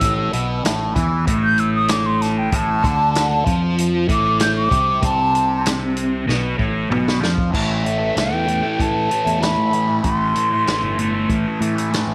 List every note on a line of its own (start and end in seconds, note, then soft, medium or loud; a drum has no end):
0.00 0.31 A1 loud
0.00 0.32 A2 loud
0.00 0.61 E6 loud
0.00 kick loud
0.00 closed hi-hat loud
0.32 0.62 B1 medium
0.32 0.63 B2 loud
0.32 closed hi-hat medium
0.64 0.94 A1 medium
0.64 0.95 A2 loud
0.64 snare loud
0.64 closed hi-hat loud
0.95 1.25 E2 loud
0.95 1.26 E3 loud
0.95 kick loud
0.95 closed hi-hat medium
1.27 2.49 A1 medium
1.27 2.51 A2 medium
1.27 kick loud
1.27 closed hi-hat loud
1.44 1.61 G6 loud
1.58 1.74 E6 medium
1.58 closed hi-hat medium
1.75 1.92 D#6 loud
1.88 2.08 D6 loud
1.88 snare loud
1.88 closed hi-hat loud
2.06 2.23 C6 loud
2.22 2.40 A5 loud
2.22 snare soft
2.22 closed hi-hat medium
2.38 2.57 G5 medium
2.52 2.82 A1 loud
2.52 2.83 A2 loud
2.52 3.75 A5 loud
2.52 kick loud
2.52 closed hi-hat loud
2.83 3.43 D2 loud
2.83 3.45 D3 loud
2.83 kick loud
2.83 closed hi-hat medium
3.15 snare loud
3.15 closed hi-hat loud
3.45 4.05 F2 loud
3.45 4.08 F3 loud
3.45 kick loud
3.45 closed hi-hat medium
3.78 closed hi-hat medium
4.08 4.68 A1 loud
4.08 4.70 A2 loud
4.08 4.41 D6 medium
4.08 kick loud
4.08 closed hi-hat medium
4.40 4.56 G6 medium
4.40 snare loud
4.40 closed hi-hat loud
4.56 5.02 D6 loud
4.70 5.01 C2 medium
4.70 5.01 C3 loud
4.70 kick loud
4.70 closed hi-hat medium
5.02 6.24 C2 loud
5.02 6.27 C3 loud
5.02 5.64 A5 loud
5.02 kick loud
5.02 closed hi-hat loud
5.35 closed hi-hat medium
5.66 snare loud
5.66 closed hi-hat loud
5.97 closed hi-hat medium
6.27 6.58 B1 medium
6.27 6.57 B2 loud
6.27 snare medium
6.57 6.88 A1 loud
6.57 6.89 A2 loud
6.57 kick medium
6.90 7.20 B1 loud
6.90 7.21 B2 loud
6.90 mid tom medium
7.08 snare medium
7.21 7.52 F2 loud
7.21 7.52 F3 loud
7.21 snare loud
7.38 kick loud
7.52 8.10 A1 medium
7.52 7.83 A2 medium
7.52 7.85 E3 medium
7.52 7.86 A3 loud
7.52 kick loud
7.52 crash loud
7.56 8.20 E5 medium
7.84 8.15 A2 medium
7.84 8.01 E3 medium
7.84 7.98 A3 medium
7.84 closed hi-hat medium
7.99 8.16 E3 medium
7.99 8.17 A3 medium
8.15 8.33 C2 medium
8.15 8.46 A2 medium
8.15 8.33 E3 medium
8.15 8.30 A3 loud
8.15 8.83 G5 medium
8.15 snare loud
8.15 closed hi-hat medium
8.30 8.60 E2 medium
8.30 8.47 E3 medium
8.30 8.49 A3 medium
8.46 8.94 A2 medium
8.46 8.64 E3 medium
8.46 8.61 A3 medium
8.46 closed hi-hat medium
8.62 9.09 E3 medium
8.62 9.10 A3 medium
8.80 9.07 A2 medium
8.80 9.44 A5 medium
8.80 kick loud
8.80 closed hi-hat medium
9.09 9.38 A2 medium
9.09 9.27 E3 medium
9.09 9.24 A3 medium
9.09 closed hi-hat medium
9.25 9.54 E2 medium
9.25 9.40 E3 medium
9.25 9.41 A3 medium
9.25 closed hi-hat medium
9.39 9.70 A2 loud
9.39 9.71 E3 medium
9.39 9.73 A3 loud
9.39 10.03 B5 loud
9.39 closed hi-hat medium
9.44 snare loud
9.57 9.99 A2 medium
9.71 10.02 A2 medium
9.71 9.89 E3 medium
9.71 9.86 A3 medium
9.71 closed hi-hat medium
9.87 10.04 E3 medium
9.87 10.05 A3 medium
10.03 10.32 A1 loud
10.03 10.33 A2 medium
10.03 10.35 E3 loud
10.03 10.36 A3 loud
10.03 11.25 C6 loud
10.03 kick loud
10.03 closed hi-hat medium
10.34 10.64 A2 medium
10.34 10.52 E3 medium
10.34 10.49 A3 medium
10.34 closed hi-hat medium
10.51 10.66 E3 medium
10.51 10.67 A3 medium
10.65 10.82 A1 medium
10.65 10.97 A2 medium
10.65 10.83 E3 medium
10.65 10.80 A3 medium
10.65 snare loud
10.65 closed hi-hat medium
10.82 11.25 G1 medium
10.82 10.98 E3 medium
10.82 10.99 A3 medium
10.98 11.45 A2 medium
10.98 11.14 E3 medium
10.98 11.11 A3 medium
10.98 closed hi-hat medium
11.12 11.60 E3 medium
11.12 11.61 A3 medium
11.29 11.44 A1 medium
11.29 kick loud
11.29 closed hi-hat medium
11.59 11.90 A2 medium
11.59 12.03 A2 medium
11.59 11.78 E3 medium
11.59 11.75 A3 medium
11.59 closed hi-hat medium
11.76 11.92 E3 medium
11.76 11.92 A3 medium
11.76 closed hi-hat medium
11.91 12.14 A2 loud
11.91 12.14 E3 loud
11.91 12.14 A3 loud
11.91 snare loud
11.91 closed hi-hat medium
12.07 12.14 A1 medium